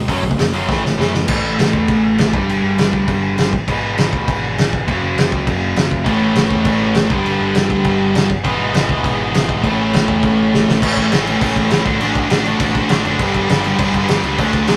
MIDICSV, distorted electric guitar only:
0, 0, Header, 1, 2, 480
1, 0, Start_track
1, 0, Key_signature, 3, "major"
1, 0, Tempo, 298063
1, 135, Time_signature, 4, 2, 24, 8
1, 23779, End_track
2, 0, Start_track
2, 0, Title_t, "Distorted electric guitar"
2, 0, Program_c, 0, 30
2, 138, Note_on_c, 0, 54, 82
2, 145, Note_on_c, 0, 57, 93
2, 153, Note_on_c, 0, 61, 93
2, 355, Note_off_c, 0, 54, 0
2, 361, Note_off_c, 0, 57, 0
2, 372, Note_off_c, 0, 61, 0
2, 374, Note_on_c, 0, 54, 65
2, 380, Note_on_c, 0, 57, 67
2, 594, Note_off_c, 0, 54, 0
2, 597, Note_off_c, 0, 57, 0
2, 627, Note_on_c, 0, 54, 68
2, 632, Note_on_c, 0, 57, 76
2, 835, Note_off_c, 0, 54, 0
2, 839, Note_off_c, 0, 57, 0
2, 854, Note_on_c, 0, 54, 88
2, 858, Note_on_c, 0, 57, 93
2, 863, Note_on_c, 0, 61, 99
2, 1080, Note_off_c, 0, 57, 0
2, 1083, Note_on_c, 0, 45, 87
2, 1085, Note_off_c, 0, 54, 0
2, 1090, Note_off_c, 0, 61, 0
2, 1093, Note_on_c, 0, 52, 79
2, 1099, Note_on_c, 0, 57, 91
2, 1320, Note_off_c, 0, 45, 0
2, 1326, Note_off_c, 0, 52, 0
2, 1328, Note_off_c, 0, 57, 0
2, 1359, Note_on_c, 0, 45, 64
2, 1362, Note_on_c, 0, 52, 68
2, 1569, Note_off_c, 0, 45, 0
2, 1571, Note_off_c, 0, 52, 0
2, 1589, Note_on_c, 0, 45, 87
2, 1601, Note_on_c, 0, 52, 88
2, 1609, Note_on_c, 0, 57, 89
2, 1815, Note_off_c, 0, 45, 0
2, 1821, Note_off_c, 0, 52, 0
2, 1825, Note_off_c, 0, 57, 0
2, 1850, Note_on_c, 0, 45, 63
2, 1851, Note_on_c, 0, 52, 73
2, 2056, Note_off_c, 0, 45, 0
2, 2057, Note_off_c, 0, 52, 0
2, 9736, Note_on_c, 0, 45, 95
2, 9754, Note_on_c, 0, 52, 92
2, 9766, Note_on_c, 0, 57, 97
2, 9766, Note_on_c, 0, 61, 105
2, 9785, Note_on_c, 0, 64, 96
2, 11414, Note_off_c, 0, 45, 0
2, 11423, Note_off_c, 0, 52, 0
2, 11426, Note_on_c, 0, 43, 91
2, 11429, Note_off_c, 0, 57, 0
2, 11429, Note_off_c, 0, 61, 0
2, 11431, Note_on_c, 0, 50, 92
2, 11438, Note_off_c, 0, 64, 0
2, 11450, Note_on_c, 0, 55, 105
2, 11459, Note_on_c, 0, 59, 116
2, 11465, Note_on_c, 0, 62, 112
2, 13337, Note_off_c, 0, 43, 0
2, 13339, Note_off_c, 0, 50, 0
2, 13349, Note_off_c, 0, 55, 0
2, 13353, Note_off_c, 0, 59, 0
2, 13356, Note_off_c, 0, 62, 0
2, 13591, Note_on_c, 0, 44, 99
2, 13604, Note_on_c, 0, 52, 92
2, 13610, Note_on_c, 0, 56, 99
2, 13629, Note_on_c, 0, 59, 111
2, 13630, Note_on_c, 0, 64, 114
2, 15496, Note_off_c, 0, 44, 0
2, 15506, Note_off_c, 0, 56, 0
2, 15511, Note_off_c, 0, 52, 0
2, 15512, Note_on_c, 0, 45, 92
2, 15515, Note_off_c, 0, 59, 0
2, 15517, Note_on_c, 0, 52, 92
2, 15525, Note_on_c, 0, 57, 107
2, 15536, Note_on_c, 0, 61, 104
2, 15544, Note_off_c, 0, 64, 0
2, 15550, Note_on_c, 0, 64, 108
2, 17405, Note_off_c, 0, 45, 0
2, 17413, Note_off_c, 0, 52, 0
2, 17413, Note_off_c, 0, 57, 0
2, 17425, Note_on_c, 0, 45, 107
2, 17426, Note_off_c, 0, 61, 0
2, 17432, Note_on_c, 0, 52, 102
2, 17432, Note_on_c, 0, 57, 100
2, 17433, Note_off_c, 0, 64, 0
2, 17444, Note_on_c, 0, 61, 98
2, 17452, Note_on_c, 0, 64, 113
2, 17897, Note_off_c, 0, 52, 0
2, 17910, Note_off_c, 0, 45, 0
2, 17911, Note_off_c, 0, 61, 0
2, 17916, Note_off_c, 0, 64, 0
2, 17916, Note_on_c, 0, 45, 84
2, 17917, Note_on_c, 0, 52, 88
2, 17920, Note_off_c, 0, 57, 0
2, 17927, Note_on_c, 0, 57, 94
2, 17931, Note_on_c, 0, 61, 99
2, 17936, Note_on_c, 0, 64, 94
2, 18114, Note_off_c, 0, 64, 0
2, 18125, Note_off_c, 0, 61, 0
2, 18133, Note_off_c, 0, 57, 0
2, 18134, Note_on_c, 0, 64, 93
2, 18137, Note_off_c, 0, 45, 0
2, 18140, Note_off_c, 0, 52, 0
2, 18144, Note_on_c, 0, 61, 88
2, 18152, Note_on_c, 0, 57, 94
2, 18157, Note_on_c, 0, 45, 86
2, 18159, Note_on_c, 0, 52, 84
2, 18353, Note_off_c, 0, 52, 0
2, 18354, Note_off_c, 0, 45, 0
2, 18360, Note_off_c, 0, 57, 0
2, 18370, Note_off_c, 0, 61, 0
2, 18371, Note_off_c, 0, 64, 0
2, 18372, Note_on_c, 0, 52, 93
2, 18373, Note_on_c, 0, 45, 97
2, 18379, Note_on_c, 0, 57, 98
2, 18389, Note_on_c, 0, 61, 107
2, 18390, Note_on_c, 0, 64, 120
2, 18818, Note_off_c, 0, 45, 0
2, 18828, Note_off_c, 0, 52, 0
2, 18837, Note_off_c, 0, 57, 0
2, 18837, Note_on_c, 0, 45, 80
2, 18842, Note_off_c, 0, 61, 0
2, 18845, Note_off_c, 0, 64, 0
2, 18848, Note_on_c, 0, 52, 90
2, 18856, Note_on_c, 0, 57, 86
2, 18861, Note_on_c, 0, 61, 90
2, 18864, Note_on_c, 0, 64, 102
2, 19051, Note_off_c, 0, 45, 0
2, 19060, Note_off_c, 0, 57, 0
2, 19067, Note_off_c, 0, 52, 0
2, 19070, Note_on_c, 0, 45, 112
2, 19073, Note_on_c, 0, 50, 94
2, 19079, Note_on_c, 0, 57, 98
2, 19082, Note_off_c, 0, 61, 0
2, 19082, Note_off_c, 0, 64, 0
2, 19088, Note_on_c, 0, 66, 121
2, 19089, Note_on_c, 0, 62, 112
2, 19283, Note_off_c, 0, 66, 0
2, 19296, Note_off_c, 0, 57, 0
2, 19300, Note_off_c, 0, 50, 0
2, 19303, Note_off_c, 0, 62, 0
2, 19303, Note_on_c, 0, 66, 114
2, 19310, Note_on_c, 0, 62, 104
2, 19313, Note_off_c, 0, 45, 0
2, 19315, Note_on_c, 0, 57, 102
2, 19319, Note_on_c, 0, 50, 98
2, 19333, Note_on_c, 0, 45, 87
2, 19774, Note_off_c, 0, 66, 0
2, 19793, Note_on_c, 0, 66, 92
2, 19799, Note_off_c, 0, 57, 0
2, 19805, Note_off_c, 0, 50, 0
2, 19805, Note_off_c, 0, 62, 0
2, 19806, Note_off_c, 0, 45, 0
2, 19811, Note_on_c, 0, 62, 96
2, 19818, Note_on_c, 0, 57, 88
2, 19824, Note_on_c, 0, 50, 90
2, 19825, Note_on_c, 0, 45, 81
2, 20036, Note_off_c, 0, 50, 0
2, 20038, Note_off_c, 0, 45, 0
2, 20045, Note_off_c, 0, 57, 0
2, 20053, Note_off_c, 0, 66, 0
2, 20056, Note_on_c, 0, 50, 88
2, 20057, Note_on_c, 0, 45, 90
2, 20064, Note_on_c, 0, 57, 101
2, 20071, Note_off_c, 0, 62, 0
2, 20073, Note_on_c, 0, 66, 96
2, 20077, Note_on_c, 0, 62, 98
2, 20272, Note_off_c, 0, 66, 0
2, 20290, Note_off_c, 0, 57, 0
2, 20292, Note_on_c, 0, 66, 113
2, 20293, Note_off_c, 0, 62, 0
2, 20295, Note_off_c, 0, 50, 0
2, 20298, Note_off_c, 0, 45, 0
2, 20299, Note_on_c, 0, 62, 108
2, 20309, Note_on_c, 0, 57, 92
2, 20314, Note_on_c, 0, 50, 91
2, 20318, Note_on_c, 0, 45, 86
2, 20747, Note_off_c, 0, 66, 0
2, 20767, Note_on_c, 0, 66, 88
2, 20770, Note_off_c, 0, 57, 0
2, 20773, Note_off_c, 0, 62, 0
2, 20778, Note_off_c, 0, 50, 0
2, 20779, Note_on_c, 0, 62, 90
2, 20783, Note_off_c, 0, 45, 0
2, 20789, Note_on_c, 0, 57, 85
2, 20798, Note_on_c, 0, 50, 82
2, 20802, Note_on_c, 0, 45, 72
2, 20995, Note_off_c, 0, 45, 0
2, 20997, Note_off_c, 0, 50, 0
2, 21006, Note_off_c, 0, 57, 0
2, 21014, Note_on_c, 0, 45, 99
2, 21015, Note_off_c, 0, 66, 0
2, 21016, Note_on_c, 0, 50, 95
2, 21025, Note_off_c, 0, 62, 0
2, 21025, Note_on_c, 0, 57, 95
2, 21031, Note_on_c, 0, 62, 95
2, 21034, Note_on_c, 0, 66, 105
2, 21242, Note_off_c, 0, 45, 0
2, 21243, Note_off_c, 0, 50, 0
2, 21248, Note_off_c, 0, 57, 0
2, 21252, Note_off_c, 0, 66, 0
2, 21255, Note_on_c, 0, 43, 110
2, 21261, Note_off_c, 0, 62, 0
2, 21262, Note_on_c, 0, 50, 104
2, 21267, Note_on_c, 0, 59, 121
2, 21268, Note_on_c, 0, 55, 94
2, 21279, Note_on_c, 0, 62, 109
2, 21719, Note_off_c, 0, 50, 0
2, 21722, Note_off_c, 0, 43, 0
2, 21724, Note_off_c, 0, 55, 0
2, 21739, Note_on_c, 0, 50, 86
2, 21741, Note_off_c, 0, 59, 0
2, 21741, Note_on_c, 0, 43, 90
2, 21743, Note_on_c, 0, 55, 90
2, 21754, Note_off_c, 0, 62, 0
2, 21760, Note_on_c, 0, 59, 99
2, 21760, Note_on_c, 0, 62, 104
2, 21940, Note_off_c, 0, 62, 0
2, 21950, Note_off_c, 0, 59, 0
2, 21956, Note_off_c, 0, 55, 0
2, 21960, Note_on_c, 0, 62, 101
2, 21963, Note_off_c, 0, 50, 0
2, 21969, Note_off_c, 0, 43, 0
2, 21969, Note_on_c, 0, 59, 96
2, 21976, Note_on_c, 0, 55, 99
2, 21983, Note_on_c, 0, 50, 90
2, 21989, Note_on_c, 0, 43, 84
2, 22181, Note_off_c, 0, 43, 0
2, 22192, Note_off_c, 0, 50, 0
2, 22200, Note_on_c, 0, 43, 95
2, 22203, Note_off_c, 0, 55, 0
2, 22210, Note_off_c, 0, 59, 0
2, 22212, Note_off_c, 0, 62, 0
2, 22212, Note_on_c, 0, 50, 107
2, 22222, Note_on_c, 0, 55, 108
2, 22230, Note_on_c, 0, 59, 107
2, 22232, Note_on_c, 0, 62, 101
2, 22667, Note_off_c, 0, 43, 0
2, 22672, Note_off_c, 0, 50, 0
2, 22681, Note_off_c, 0, 55, 0
2, 22686, Note_off_c, 0, 59, 0
2, 22686, Note_on_c, 0, 43, 88
2, 22687, Note_off_c, 0, 62, 0
2, 22691, Note_on_c, 0, 50, 96
2, 22701, Note_on_c, 0, 55, 88
2, 22706, Note_on_c, 0, 59, 85
2, 22706, Note_on_c, 0, 62, 90
2, 22904, Note_off_c, 0, 62, 0
2, 22915, Note_off_c, 0, 59, 0
2, 22921, Note_off_c, 0, 55, 0
2, 22924, Note_on_c, 0, 62, 103
2, 22929, Note_off_c, 0, 43, 0
2, 22931, Note_off_c, 0, 50, 0
2, 22934, Note_on_c, 0, 59, 91
2, 22941, Note_on_c, 0, 55, 94
2, 22948, Note_on_c, 0, 43, 88
2, 22950, Note_on_c, 0, 50, 78
2, 23143, Note_off_c, 0, 50, 0
2, 23156, Note_off_c, 0, 62, 0
2, 23158, Note_off_c, 0, 55, 0
2, 23162, Note_off_c, 0, 59, 0
2, 23162, Note_on_c, 0, 50, 106
2, 23165, Note_on_c, 0, 54, 103
2, 23169, Note_off_c, 0, 43, 0
2, 23174, Note_on_c, 0, 62, 113
2, 23177, Note_on_c, 0, 57, 109
2, 23620, Note_off_c, 0, 54, 0
2, 23625, Note_off_c, 0, 50, 0
2, 23634, Note_off_c, 0, 57, 0
2, 23640, Note_off_c, 0, 62, 0
2, 23640, Note_on_c, 0, 54, 87
2, 23645, Note_on_c, 0, 50, 87
2, 23654, Note_on_c, 0, 57, 96
2, 23660, Note_on_c, 0, 62, 86
2, 23779, Note_off_c, 0, 50, 0
2, 23779, Note_off_c, 0, 54, 0
2, 23779, Note_off_c, 0, 57, 0
2, 23779, Note_off_c, 0, 62, 0
2, 23779, End_track
0, 0, End_of_file